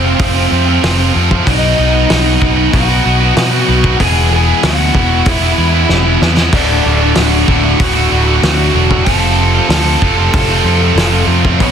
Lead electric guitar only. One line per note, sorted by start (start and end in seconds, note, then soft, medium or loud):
0.00 1.11 C4 medium
0.00 1.10 C5 medium
1.46 2.69 D#4 medium
1.46 2.77 D#5 medium
2.72 3.95 F#4 medium
2.72 3.97 F#5 loud
4.01 4.30 G#4 medium
4.01 4.32 G#5 loud
4.33 4.62 G#4 medium
4.33 4.66 G#5 loud
4.66 5.24 F#4 medium
4.66 5.25 F#5 medium
5.29 6.19 E4 medium
5.29 6.20 E5 medium
6.54 7.77 D4 medium
6.54 7.76 D5 medium
7.78 9.03 F#4 medium
7.78 9.10 F#5 loud
9.05 9.67 A4 medium
9.05 9.67 A5 loud
9.68 11.24 A4 medium
9.68 11.23 A5 medium
11.63 11.71 C#4 medium
11.63 11.71 C#5 loud